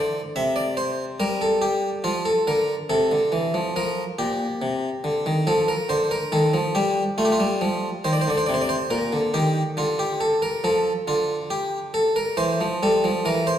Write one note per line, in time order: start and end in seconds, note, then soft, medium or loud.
0.00 0.19 D3 medium
0.00 0.20 D5 medium
0.36 1.18 C3 medium
0.36 0.56 E5 medium
0.56 0.77 D5 medium
0.77 1.03 C5 medium
1.20 2.02 G3 medium
1.20 1.40 A#4 medium
1.42 1.62 A4 medium
1.62 1.88 G4 medium
2.04 2.31 F3 medium
2.04 2.25 F4 medium
2.25 2.46 A4 medium
2.47 2.74 D3 medium
2.47 2.73 A#4 medium
2.90 3.10 C3 medium
2.90 3.72 A4 medium
3.11 3.32 D3 medium
3.32 3.53 E3 medium
3.54 3.75 F3 medium
3.76 4.02 F3 medium
3.76 4.03 A#4 medium
4.19 4.45 A#2 medium
4.19 5.43 G4 medium
4.62 4.88 C3 medium
5.04 5.25 D3 medium
5.26 5.46 D#3 medium
5.47 5.74 F3 medium
5.47 5.68 A4 medium
5.68 5.89 A#4 medium
5.89 6.16 D3 medium
5.89 6.10 C5 medium
6.11 6.32 A#4 medium
6.32 6.53 D#3 medium
6.32 6.59 A4 medium
6.54 6.74 F3 medium
6.75 7.02 G3 medium
6.75 7.02 G4 medium
7.18 7.39 A3 medium
7.18 7.25 F4 medium
7.25 7.32 G4 medium
7.32 8.03 F4 medium
7.40 7.61 G3 medium
7.61 7.88 F3 medium
8.04 8.26 D#3 medium
8.04 8.12 C5 medium
8.13 8.21 D5 medium
8.21 8.29 C5 medium
8.28 8.48 D3 medium
8.28 8.37 D5 medium
8.38 8.45 C5 medium
8.46 8.75 C3 medium
8.46 8.53 D5 medium
8.54 8.61 C5 medium
8.62 8.69 D5 medium
8.69 8.91 C5 medium
8.90 9.12 A#2 medium
8.90 9.17 A#4 medium
9.12 9.33 D3 medium
9.34 9.61 D#3 loud
9.34 9.61 G4 medium
9.77 10.61 D3 medium
9.77 9.99 F4 medium
9.99 10.20 G4 medium
10.21 10.42 A4 medium
10.42 10.63 A#4 medium
10.64 10.91 F3 medium
10.64 10.91 A4 medium
11.08 12.34 D3 medium
11.08 11.35 F4 medium
11.50 11.78 G4 medium
11.94 12.15 A4 medium
12.16 12.37 A#4 medium
12.37 12.59 E3 medium
12.37 12.65 C5 medium
12.61 12.82 F3 medium
12.83 13.04 G3 medium
12.83 13.10 A4 medium
13.04 13.25 F3 medium
13.25 13.52 E3 medium
13.25 13.47 A#4 medium
13.47 13.59 C5 loud